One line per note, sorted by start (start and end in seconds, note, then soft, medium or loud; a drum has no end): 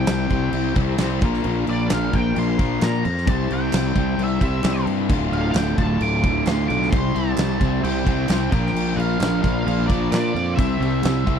0.00 0.29 C3 medium
0.00 0.30 G3 loud
0.00 0.30 C4 loud
0.00 0.31 E4 loud
0.00 1.20 E4 medium
0.00 0.30 G4 loud
0.00 1.20 G4 medium
0.00 0.29 C5 loud
0.00 1.20 C5 medium
0.00 1.20 E5 medium
0.00 0.73 G5 medium
0.07 0.29 C2 medium
0.07 snare loud
0.07 clap loud
0.07 crash medium
0.30 0.51 C2 medium
0.30 0.99 C4 medium
0.30 0.99 E4 medium
0.30 0.98 G4 medium
0.30 0.98 C5 medium
0.30 kick medium
0.30 crash medium
0.34 0.97 C3 medium
0.34 0.98 G3 medium
0.53 0.74 C2 loud
0.53 crash medium
0.75 0.97 C2 loud
0.75 0.96 C3 medium
0.75 0.98 G3 medium
0.75 0.97 C4 medium
0.75 kick medium
0.75 crash medium
0.98 1.23 C2 loud
0.98 1.20 C3 medium
0.98 1.21 G3 medium
0.98 1.21 C4 loud
0.98 1.21 E4 medium
0.98 1.22 G4 medium
0.98 snare loud
0.98 clap loud
0.98 crash medium
1.02 1.22 C5 loud
1.21 1.43 A#1 loud
1.21 1.88 A#2 loud
1.21 1.89 F3 loud
1.21 1.90 A#3 loud
1.21 1.90 D4 loud
1.21 3.26 F4 medium
1.21 1.90 F4 loud
1.21 3.26 D5 medium
1.21 3.26 F5 medium
1.21 kick loud
1.21 crash medium
1.25 3.27 A#4 medium
1.25 1.91 A#4 loud
1.34 snare soft
1.44 1.65 A#1 loud
1.44 crash medium
1.67 1.88 A#1 loud
1.67 1.92 D5 loud
1.67 crash medium
1.90 2.11 A#1 loud
1.90 2.57 A#2 medium
1.90 2.58 F3 medium
1.90 2.58 A#3 medium
1.90 2.58 D4 loud
1.90 2.58 F4 medium
1.90 2.15 F5 loud
1.90 snare loud
1.90 clap loud
1.90 crash medium
1.94 2.57 A#4 loud
2.13 2.34 A#1 medium
2.13 2.38 G5 loud
2.13 kick medium
2.13 crash medium
2.36 2.77 A#1 loud
2.36 2.57 A#2 medium
2.36 2.58 F3 medium
2.36 2.57 A#3 medium
2.36 2.83 C6 loud
2.36 crash medium
2.58 3.04 A#2 medium
2.58 3.04 F3 medium
2.58 3.04 A#3 medium
2.58 3.04 D4 medium
2.58 3.03 F4 medium
2.58 3.02 A#4 loud
2.58 kick loud
2.58 crash medium
2.81 3.02 A#2 loud
2.81 3.04 A#5 loud
2.81 snare loud
2.81 clap loud
2.81 crash medium
3.05 3.25 F2 loud
3.05 3.28 A#5 loud
3.05 crash medium
3.18 snare soft
3.25 3.48 C2 loud
3.25 3.94 C3 loud
3.25 3.94 G3 medium
3.25 3.95 C4 loud
3.25 5.07 E4 medium
3.25 3.95 E4 loud
3.25 5.07 G4 medium
3.25 3.94 G4 loud
3.25 5.07 C5 medium
3.25 5.07 E5 medium
3.25 3.51 A5 loud
3.25 kick loud
3.25 crash medium
3.30 3.93 C5 loud
3.50 3.71 C2 medium
3.50 4.22 G5 loud
3.50 crash medium
3.73 3.94 C2 medium
3.73 snare loud
3.73 clap loud
3.73 crash loud
3.94 4.16 C2 loud
3.94 4.63 G3 medium
3.94 4.64 C4 medium
3.94 4.63 E4 medium
3.94 4.63 G4 medium
3.94 4.62 C5 medium
3.94 kick medium
3.94 crash medium
3.98 4.62 C3 medium
4.18 4.39 C2 loud
4.18 crash loud
4.24 4.85 E5 medium
4.40 4.62 C2 loud
4.40 4.63 G3 medium
4.40 4.62 C4 loud
4.40 kick medium
4.40 crash medium
4.45 4.61 C3 medium
4.63 4.85 C2 loud
4.63 5.08 C3 medium
4.63 5.08 G3 medium
4.63 5.09 C4 medium
4.63 5.09 E4 medium
4.63 5.09 G4 medium
4.63 5.10 C5 medium
4.63 snare loud
4.63 clap loud
4.63 crash medium
4.86 5.11 G2 loud
4.86 crash medium
5.08 5.30 D1 loud
5.08 5.76 D2 loud
5.08 6.24 D2 medium
5.08 5.76 A2 medium
5.08 5.77 D3 loud
5.08 5.77 A3 loud
5.08 6.90 F4 medium
5.08 6.90 A4 medium
5.08 6.90 D5 medium
5.08 6.90 F5 medium
5.08 kick loud
5.08 crash medium
5.12 5.76 F4 loud
5.32 5.53 D1 loud
5.32 5.77 D3 medium
5.32 5.50 F5 medium
5.32 crash medium
5.52 5.75 D1 medium
5.52 6.46 A2 medium
5.52 5.56 F5 medium
5.52 clap loud
5.52 crash medium
5.56 5.78 G5 medium
5.56 snare loud
5.77 5.98 D1 medium
5.77 6.45 D2 medium
5.77 6.46 A2 medium
5.77 6.23 D3 medium
5.77 6.46 D3 medium
5.77 6.45 A3 medium
5.77 6.45 F4 medium
5.77 6.02 A5 loud
5.77 kick medium
5.77 crash medium
6.01 6.42 D1 loud
6.01 6.68 A3 medium
6.01 6.44 D6 loud
6.01 crash medium
6.23 6.45 A2 medium
6.23 6.45 D3 medium
6.23 6.92 D3 medium
6.23 kick medium
6.23 crash medium
6.27 6.43 D2 medium
6.46 6.90 D2 medium
6.46 6.67 D2 medium
6.46 6.92 A2 medium
6.46 6.91 A2 medium
6.46 6.91 D3 medium
6.46 6.92 A3 medium
6.46 6.68 C6 loud
6.46 snare loud
6.46 clap loud
6.46 crash medium
6.50 6.92 F4 medium
6.68 6.91 B1 loud
6.68 6.92 A3 medium
6.68 6.90 D6 loud
6.68 crash medium
6.83 snare soft
6.91 7.13 C2 loud
6.91 7.59 C3 loud
6.91 8.06 C3 medium
6.91 7.59 G3 loud
6.91 7.60 C4 loud
6.91 8.50 E4 medium
6.91 7.60 E4 loud
6.91 8.50 G4 medium
6.91 7.59 G4 loud
6.91 8.50 C5 medium
6.91 8.50 E5 medium
6.91 7.15 C6 loud
6.91 kick loud
6.91 crash medium
6.95 7.58 C5 medium
7.15 7.36 C2 loud
7.15 7.60 E4 medium
7.15 7.83 A5 loud
7.15 crash medium
7.38 7.58 C2 loud
7.38 8.28 C4 medium
7.38 snare loud
7.38 clap loud
7.38 crash medium
7.60 7.81 C2 medium
7.60 8.27 C3 medium
7.60 8.28 G3 medium
7.60 8.29 C4 medium
7.60 8.06 E4 medium
7.60 8.28 E4 medium
7.60 8.28 G4 medium
7.60 8.27 C5 medium
7.60 kick medium
7.60 crash medium
7.84 8.04 C2 loud
7.84 8.52 G4 medium
7.84 8.50 G5 loud
7.84 crash loud
8.04 8.27 C2 loud
8.04 8.26 C3 medium
8.04 8.28 G3 medium
8.04 8.27 C4 medium
8.04 8.52 E4 medium
8.04 kick medium
8.04 crash medium
8.29 8.50 C2 loud
8.29 8.50 C3 medium
8.29 8.51 G3 medium
8.29 8.52 C4 medium
8.29 8.51 C4 medium
8.29 8.51 E4 medium
8.29 8.52 G4 loud
8.29 8.52 C5 medium
8.29 snare loud
8.29 clap loud
8.29 crash medium
8.50 8.73 A#1 loud
8.50 9.18 A#2 medium
8.50 8.73 A#2 medium
8.50 9.19 F3 loud
8.50 9.19 A#3 loud
8.50 9.20 D4 loud
8.50 10.56 F4 medium
8.50 9.20 F4 loud
8.50 10.56 A#4 medium
8.50 10.56 D5 medium
8.50 10.55 F5 medium
8.50 8.98 G5 loud
8.50 kick loud
8.50 crash medium
8.54 9.20 A#4 loud
8.66 snare soft
8.74 8.95 A#1 medium
8.74 9.89 A#2 medium
8.74 crash loud
8.96 9.18 A#1 medium
8.96 9.42 D4 medium
8.96 9.40 F5 medium
8.96 crash medium
9.20 9.41 A#1 loud
9.20 9.87 A#2 medium
9.20 9.88 F3 loud
9.20 10.11 A#3 medium
9.20 9.88 A#3 loud
9.20 9.88 D4 medium
9.20 9.88 F4 medium
9.20 9.86 A#4 loud
9.20 snare loud
9.20 clap loud
9.20 crash medium
9.42 9.64 A#1 medium
9.42 9.88 D4 medium
9.42 9.86 F5 medium
9.42 kick medium
9.42 crash medium
9.64 10.07 A#1 loud
9.64 9.87 A#2 medium
9.64 9.88 F3 medium
9.64 9.87 A#3 medium
9.64 10.33 F4 medium
9.64 crash medium
9.87 10.34 A#3 medium
9.87 10.57 D4 medium
9.87 10.33 D4 medium
9.87 10.33 F4 medium
9.87 10.32 A#4 medium
9.87 10.10 D5 medium
9.87 kick medium
9.87 crash medium
9.91 10.35 A#2 medium
9.91 10.34 F3 medium
10.11 10.32 A#2 loud
10.11 10.58 A#3 medium
10.11 10.55 D5 medium
10.11 snare loud
10.11 clap loud
10.11 crash medium
10.34 10.55 F2 medium
10.34 10.57 F4 medium
10.34 crash medium
10.56 10.79 C2 loud
10.56 11.24 C3 medium
10.56 11.39 C3 medium
10.56 11.24 G3 loud
10.56 11.25 C4 loud
10.56 11.25 E4 loud
10.56 11.26 G4 loud
10.56 11.39 E5 medium
10.56 kick loud
10.56 crash medium
10.60 11.39 E4 medium
10.60 11.39 G4 medium
10.60 11.25 C5 loud
10.60 11.39 C5 medium
10.60 11.39 E5 medium
10.80 11.01 C2 loud
10.80 11.25 E4 medium
10.80 crash medium
11.04 11.25 C2 loud
11.04 11.39 C4 medium
11.04 snare loud
11.04 clap loud
11.04 crash medium
11.26 11.39 C2 medium
11.26 11.39 C3 medium
11.26 11.39 G3 medium
11.26 11.39 C4 medium
11.26 11.39 E4 medium
11.26 11.39 G4 medium
11.26 11.39 C5 medium
11.26 kick medium
11.26 crash medium